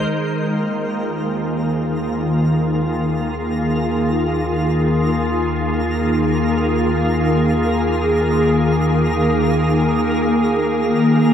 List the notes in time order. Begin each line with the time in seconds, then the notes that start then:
Already playing: D#3 G#3 D#4 A#4 C5 C6
0.11 D#2 D#3 A#4 A#5
0.27 F4
0.41 A#3
0.87 G#4
10.97 D#2 A#4 A#5